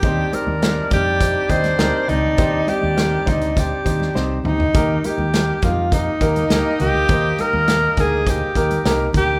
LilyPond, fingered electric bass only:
\new Staff \with { instrumentName = "Fingered electric bass" } { \clef bass \time 4/4 \key c \minor \tempo 4 = 102 ees,8 r16 ees,8. f,4 ees,8 d,16 r16 des,16 d,16 | ees,8 r16 ees,8. d,4 ees,8 c,8 d,8 | ees,8 r16 ees,8. f,4 ees,8 d,16 r16 des,16 d,16 | ees,8 r16 ees,8. d,4 ees,8 c,8 d,8 | }